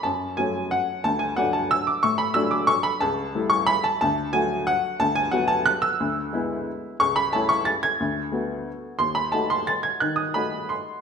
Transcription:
upright piano
0.03 F#2 A5
0.37 F#3 A3 C#4 G#5
0.71 F#5
1.04 D2 A5
1.19 G#5
1.36 F#3 A3 D4 F#5
1.53 A5
1.71 E6
1.87 D6
2.03 A2 C#6
2.18 B5
2.34 F#3 A3 D4 E6
2.51 D6
2.67 C#6
2.83 B5
3.01 C#2 A5
3.35 G3 A3 E4
3.50 C#6
3.67 B5
3.84 A5
4.01 D2 A5
4.33 F#3 A3 F#4 G#5
4.67 F#5
5.00 D2 A5
5.15 G#5
5.32 F#3 B3 F#4 F#5
5.48 A5
5.66 F#6
5.82 E6
6.00 D2
6.33 G#3 B3 E4
7.00 C#2 C#6
7.16 B5
7.33 A3 C#4 E4 A5
7.49 C#6
7.65 A6
7.83 G#6
8.00 D2
8.32 A3 B3 F#4
8.99 D#2 C6
9.15 B5
9.32 A3 D#4 F#4 A5
9.50 C6
9.67 A6
9.83 G#6
10.00 D#3 F#6
10.16 D#6
10.34 A3 D#4 F#4 B5
10.69 C6

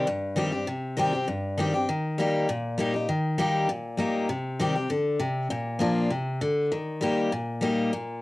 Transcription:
steel-string acoustic guitar
0.07 G2
0.36 D#3 G3 C4 G4
0.52 C4 G4
0.67 C3
0.97 D#3 G3 C4 G4
1.13 C4 G4
1.28 G2
1.58 D#3 G3 C4 G4
1.74 C4 G4
1.89 D#3
2.18 G3 A#3 D#4 G4
2.49 A#2
2.78 G3 A#3 D#4 G4
2.94 D#4 G4
3.09 D#3
3.38 G3 A#3 D#4 G4
3.69 A#2
3.97 G3 A#3 D#4 G4
4.29 C3
4.59 D#3 G3 C4 G4
4.75 C4 G4
4.90 D3
5.19 C3
5.50 A#2
5.79 F3 A#3 D4 F4
6.10 C3
6.41 D3
6.72 D#3
7.01 G3 A#3 D#4 G4
7.32 A#2
7.61 G3 A#3 D#4 G4
7.93 A#2

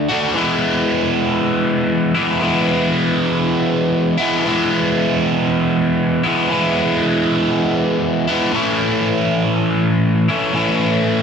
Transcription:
overdriven electric guitar
0.10 D3 A3 D4 F#4
0.35 E3 G#3 B3
0.39 E4
2.15 E3 G#3 B3 E4
2.40 E3 G#3 B3 E4
4.18 E3 G#3 B3 E4
4.44 E3 G#3 B3
4.48 E4
6.23 E3 G#3 B3 E4
6.49 E3 G#3 B3 E4
8.27 G#3 B3 E4
8.31 E3
8.52 A2 E3 A3 C#4
8.56 E4
10.28 E3 A3 C#4 E4
10.33 A2
10.53 A2 E3 A3 C#4 E4

